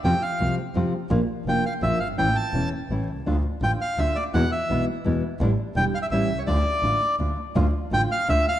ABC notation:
X:1
M:3/4
L:1/16
Q:1/4=168
K:Aphr
V:1 name="Bandoneon"
g2 f4 z6 | z4 g2 f2 e2 f2 | g2 a4 z6 | z4 g2 f2 e2 d2 |
^f2 e4 z6 | z4 g2 f e e3 ^c | d8 z4 | z4 g2 f2 e2 f2 |]
V:2 name="Nylon-string guitar"
[C,F,A,CF] z3 [C,F,A,CF]2 z2 [C,F,A,CF]2 z2 | [F,B,DF] z3 [F,B,DF]2 z2 [F,B,DF]2 z2 | [E,A,^CE] z3 [E,A,CE]2 z2 [E,A,CE]2 z2 | [D,A,DF] z3 [D,A,DF]2 z2 [D,A,DF]2 z2 |
[=B,,E,^G,=B,E] z3 [B,,E,G,B,E]2 z2 [B,,E,G,B,E]2 z2 | [D,G,DE] z3 [D,G,DE]2 z2 [E,G,^CE]2 z2 | [D,A,DF] z3 [D,A,DF]2 z2 [D,A,DF]2 z2 | [D,A,DF] z3 [D,A,DF]2 z2 [D,A,DF]2 z2 |]
V:3 name="Double bass" clef=bass
F,,2 z2 C,,2 z2 F,,2 z2 | B,,,2 z2 F,,,2 z2 B,,,2 G,,,2 | A,,,2 z2 E,,,2 z2 A,,,2 C,,2 | D,,2 z2 A,,,2 z2 D,,2 z2 |
E,,2 z2 =B,,,2 z2 E,,2 z2 | A,,,2 z2 E,,,2 z2 A,,,2 C,,2 | D,,2 z2 A,,,2 z2 D,,2 z2 | D,,2 z2 A,,,2 z2 D,,2 z2 |]